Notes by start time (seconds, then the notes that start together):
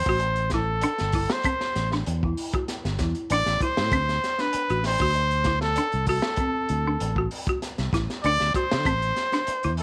Already playing: C5
0.06 A1 F#4, kick
0.20 closed hi-hat
0.36 closed hi-hat
0.50 kick, snare, closed hi-hat
0.54 E4 A4
0.81 D4, closed hi-hat
0.98 G1, snare, closed hi-hat
1.12 E4, kick, open hi-hat
1.30 C5, snare, closed hi-hat
1.44 C4, kick, closed hi-hat
1.61 snare
1.76 A1, snare, closed hi-hat
1.92 D4, snare
2.06 E2, closed hi-hat
2.23 E4, kick
2.37 open hi-hat
2.53 F#4, kick, closed hi-hat
2.68 snare, closed hi-hat
2.85 G1, snare, closed hi-hat
2.99 E2 E4, kick, snare, closed hi-hat
3.15 closed hi-hat
3.30 A1 D4 D5, closed hi-hat
3.46 A1, snare, closed hi-hat
3.61 E4 C5, kick, closed hi-hat
3.77 A2, snare, closed hi-hat
3.91 D2 C4, kick, closed hi-hat
4.09 snare, closed hi-hat
4.24 snare, closed hi-hat
4.39 D4 B4, snare, closed hi-hat
4.53 muted fingered electric bass stroke, closed hi-hat
4.70 A1 F#4, closed hi-hat
4.84 C5, snare, open hi-hat
5.00 D2 F#4, kick
5.14 closed hi-hat
5.31 closed hi-hat
5.44 E4, kick, snare, closed hi-hat
5.61 A4, snare
5.76 D4, closed hi-hat
5.92 C2, closed hi-hat
6.06 F#4 A4, kick, open hi-hat
6.22 snare, closed hi-hat
6.36 C4, kick, closed hi-hat
6.69 D2, closed hi-hat
6.87 D4
7.00 A1, closed hi-hat
7.16 F#4, kick
7.31 open hi-hat
7.47 F#4, kick, closed hi-hat
7.62 snare, closed hi-hat
7.78 C2, snare, closed hi-hat
7.93 A1 E4, kick, snare, closed hi-hat
8.10 snare, closed hi-hat
8.24 D2 D4 D5, closed hi-hat
8.40 D2, snare, closed hi-hat
8.54 F#4 C5, muted fingered electric bass stroke, kick, closed hi-hat
8.72 D3, snare, closed hi-hat
8.85 A1 C4, kick, closed hi-hat
9.02 closed hi-hat
9.16 snare, closed hi-hat
9.32 D4, snare, closed hi-hat
9.47 muted fingered electric bass stroke, closed hi-hat
9.63 E2 E4, closed hi-hat
9.77 A4, open hi-hat